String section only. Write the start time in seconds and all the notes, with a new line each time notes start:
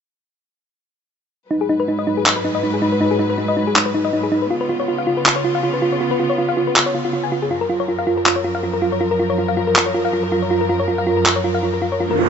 1.51 G#2 F#3 B4
4.51 C#3 B3 F4
7.51 F#2 F3 A#4